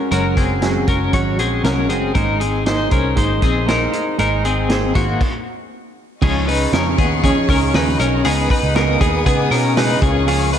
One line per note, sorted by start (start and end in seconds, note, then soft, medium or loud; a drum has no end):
0.00 0.11 G#3 soft
0.00 0.12 C#4 medium
0.00 0.11 F#4 medium
0.11 0.84 F#1 medium
0.11 0.37 F#3 medium
0.11 0.37 G#3 medium
0.11 0.37 C#4 medium
0.11 0.36 F#4 medium
0.11 0.37 A#4 medium
0.11 closed hi-hat medium
0.37 0.61 G#3 soft
0.37 0.85 C4 soft
0.37 0.62 C#4 medium
0.37 0.62 F#4 medium
0.37 0.85 G#4 medium
0.37 kick medium
0.37 closed hi-hat medium
0.61 0.88 F#3 medium
0.61 0.88 G#3 medium
0.61 0.88 C#4 medium
0.61 0.86 F#4 medium
0.61 snare loud
0.61 closed hi-hat medium
0.87 1.10 F#1 medium
0.87 1.13 G#3 soft
0.87 1.14 C#4 soft
0.87 1.13 F#4 medium
0.87 1.13 A#4 medium
0.87 kick medium
0.87 closed hi-hat medium
1.13 1.39 G#1 medium
1.13 1.39 F#3 medium
1.13 1.39 G#3 medium
1.13 1.39 C#4 medium
1.13 1.37 F#4 medium
1.13 1.39 C#5 medium
1.13 kick medium
1.13 closed hi-hat medium
1.38 1.61 A#1 medium
1.38 1.63 G#3 soft
1.38 1.65 C4 medium
1.38 1.65 C#4 medium
1.38 1.64 F#4 medium
1.38 1.64 G#4 medium
1.38 closed hi-hat medium
1.64 1.90 C2 medium
1.64 1.90 F#3 medium
1.64 1.90 G#3 medium
1.64 1.90 C#4 medium
1.64 1.89 F#4 medium
1.64 1.89 A#4 medium
1.64 snare loud
1.64 closed hi-hat medium
1.89 2.12 F#1 medium
1.89 2.14 G#3 soft
1.89 2.16 C4 medium
1.89 2.16 C#4 medium
1.89 2.15 F#4 medium
1.89 2.14 G#4 medium
1.89 closed hi-hat medium
2.15 2.88 G#1 medium
2.15 2.41 G#3 medium
2.15 2.41 A#3 medium
2.15 2.42 D#4 medium
2.15 2.40 G#4 medium
2.15 2.40 A#4 medium
2.15 2.39 C5 loud
2.15 kick medium
2.15 closed hi-hat medium
2.40 2.67 C4 medium
2.40 2.65 D#4 soft
2.40 2.66 G#4 soft
2.40 2.66 C5 soft
2.40 closed hi-hat medium
2.65 2.91 A#3 medium
2.65 2.92 D#4 medium
2.65 2.91 G#4 medium
2.65 2.89 C5 medium
2.65 snare loud
2.65 closed hi-hat medium
2.90 3.14 C2 medium
2.90 3.18 C#4 medium
2.90 3.16 D#4 soft
2.90 3.16 G#4 medium
2.90 3.17 A#4 medium
2.90 3.17 C5 medium
2.90 kick medium
2.90 closed hi-hat medium
3.16 3.39 G#1 medium
3.16 3.42 G#3 medium
3.16 3.42 A#3 medium
3.16 3.43 D#4 medium
3.16 3.42 G#4 medium
3.16 3.40 C5 medium
3.16 kick medium
3.16 closed hi-hat loud
3.41 3.86 A#1 medium
3.41 3.69 C4 medium
3.41 3.67 D#4 soft
3.41 3.67 G#4 medium
3.41 3.67 C5 medium
3.41 kick medium
3.41 snare soft
3.41 closed hi-hat medium
3.66 3.93 A#3 medium
3.66 3.94 D#4 medium
3.66 3.93 G#4 medium
3.66 4.16 A#4 medium
3.66 3.91 C5 medium
3.66 snare loud
3.66 closed hi-hat medium
3.92 4.18 D#4 soft
3.92 4.19 G#4 medium
3.92 4.18 C5 medium
3.92 closed hi-hat medium
4.18 4.92 G#1 loud
4.18 4.44 G#3 medium
4.18 4.44 A#3 medium
4.18 4.45 D#4 medium
4.18 4.44 G#4 medium
4.18 4.45 A#4 medium
4.18 4.42 C5 medium
4.18 closed hi-hat medium
4.43 4.93 C4 medium
4.43 4.68 D#4 soft
4.43 4.70 G#4 soft
4.43 4.69 C5 medium
4.43 closed hi-hat medium
4.69 4.95 A#3 medium
4.69 4.95 D#4 medium
4.69 4.95 G#4 medium
4.69 4.93 C5 medium
4.69 snare loud
4.69 closed hi-hat medium
4.95 5.17 G#1 medium
4.95 5.21 A#3 medium
4.95 5.22 D#4 soft
4.95 5.21 F#4 medium
4.95 5.21 G#4 soft
4.95 5.20 C5 medium
4.95 kick loud
4.95 closed hi-hat medium
5.21 kick loud
5.21 crash medium
6.22 6.65 C#2 loud
6.22 6.47 C#3 medium
6.22 6.48 F3 medium
6.22 6.48 C#4 loud
6.22 6.48 D#4 medium
6.22 8.23 G#4 medium
6.22 6.46 G#4 loud
6.22 9.98 D#5 medium
6.22 8.22 F5 medium
6.22 8.22 C#6 medium
6.22 kick loud
6.22 crash loud
6.47 6.72 C#4 soft
6.47 6.73 D#4 medium
6.47 6.73 G#4 medium
6.47 6.73 B4 medium
6.47 hi-hat pedal medium
6.47 open hi-hat medium
6.72 6.94 F2 loud
6.72 6.98 C#3 medium
6.72 6.98 F3 medium
6.72 6.99 C#4 medium
6.72 6.98 D#4 medium
6.72 6.96 G#4 loud
6.72 6.98 A#4 medium
6.72 snare loud
6.72 hi-hat pedal medium
6.72 open hi-hat medium
6.97 7.31 D#2 medium
6.97 7.24 B3 medium
6.97 7.22 C#4 medium
6.97 7.23 D#4 medium
6.97 7.23 G#4 medium
6.97 kick loud
6.97 hi-hat pedal medium
6.97 open hi-hat medium
7.22 7.48 F3 medium
7.22 7.49 C#4 medium
7.22 7.48 D#4 medium
7.22 7.46 G#4 medium
7.22 kick medium
7.22 hi-hat pedal medium
7.22 open hi-hat loud
7.48 7.70 C#2 medium
7.48 7.73 C#4 medium
7.48 7.73 D#4 medium
7.48 7.74 G#4 medium
7.48 7.75 A#4 medium
7.48 kick loud
7.48 hi-hat pedal medium
7.48 open hi-hat medium
7.73 7.96 D#2 medium
7.73 7.99 C#3 medium
7.73 7.99 F3 medium
7.73 7.99 C#4 loud
7.73 7.99 D#4 loud
7.73 7.97 G#4 loud
7.73 7.99 B4 medium
7.73 snare loud
7.73 hi-hat pedal medium
7.73 open hi-hat medium
7.98 8.21 B1 loud
7.98 8.24 C#4 medium
7.98 8.25 D#4 medium
7.98 8.24 G#4 medium
7.98 8.25 A#4 medium
7.98 hi-hat pedal medium
7.98 open hi-hat medium
8.24 8.47 C#2 loud
8.24 8.50 C#3 medium
8.24 8.50 G#3 medium
8.24 8.50 B3 loud
8.24 8.50 D#4 loud
8.24 8.48 G#4 medium
8.24 10.01 B4 medium
8.24 10.59 G#5 medium
8.24 10.01 D#6 medium
8.24 hi-hat pedal medium
8.24 open hi-hat medium
8.49 8.75 B3 soft
8.49 8.75 D#4 soft
8.49 8.75 G#4 medium
8.49 8.76 B4 medium
8.49 kick medium
8.49 hi-hat pedal medium
8.49 open hi-hat medium
8.63 8.95 C#2 medium
8.75 9.00 C#3 medium
8.75 9.01 G#3 medium
8.75 9.01 B3 medium
8.75 9.00 D#4 loud
8.75 8.99 G#4 loud
8.75 9.00 A#4 medium
8.75 snare loud
8.75 hi-hat pedal medium
8.75 open hi-hat medium
9.00 9.22 D#2 medium
9.00 9.25 B3 soft
9.00 9.26 D#4 medium
9.00 9.26 G#4 medium
9.00 kick medium
9.00 hi-hat pedal medium
9.00 open hi-hat medium
9.25 9.48 C#3 loud
9.25 9.51 G#3 medium
9.25 9.52 B3 medium
9.25 9.51 D#4 medium
9.25 9.49 G#4 medium
9.25 kick loud
9.25 hi-hat pedal medium
9.25 open hi-hat loud
9.51 9.94 B2 medium
9.51 9.76 B3 medium
9.51 9.77 C#4 medium
9.51 9.77 D#4 medium
9.51 9.76 G#4 medium
9.51 9.77 A#4 medium
9.51 snare soft
9.51 hi-hat pedal medium
9.51 open hi-hat medium
9.76 10.02 C#3 medium
9.76 10.02 G#3 loud
9.76 10.02 B3 medium
9.76 10.02 D#4 loud
9.76 10.00 G#4 loud
9.76 10.02 B4 medium
9.76 snare loud
9.76 hi-hat pedal medium
9.76 open hi-hat loud
10.01 10.59 C#2 loud
10.01 10.27 A#3 soft
10.01 10.27 C#4 medium
10.01 10.27 F4 medium
10.01 10.27 G#4 medium
10.01 10.59 A#4 medium
10.01 10.59 F5 medium
10.01 10.59 C#6 medium
10.01 kick loud
10.01 hi-hat pedal medium
10.01 open hi-hat medium
10.27 10.52 C#3 medium
10.27 10.52 F3 medium
10.27 10.53 A#3 loud
10.27 10.53 C#4 medium
10.27 10.52 F4 medium
10.27 10.51 G#4 loud
10.27 hi-hat pedal medium
10.27 open hi-hat loud
10.52 10.59 A#3 soft
10.52 10.59 D#4 medium
10.52 10.59 F4 medium
10.52 10.59 G#4 medium
10.52 10.59 B4 medium
10.52 hi-hat pedal medium
10.52 open hi-hat medium